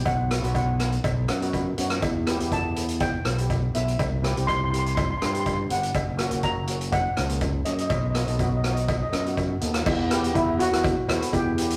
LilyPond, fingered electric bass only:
\new Staff \with { instrumentName = "Fingered electric bass" } { \clef bass \time 4/4 \key e \minor \tempo 4 = 122 b,,8. b,,4~ b,,16 b,,8 fis,4 fis,8 | e,8. e,4.~ e,16 b,,4 b,,8 | c,8. c,4.~ c,16 g,4 g,,8 | fis,,8. fis,,4.~ fis,,16 cis,4 fis,8 |
b,,8. b,,4.~ b,,16 fis,4 dis,8 | e,4 e,8. e,8 r16 e,16 r16 e,4 | }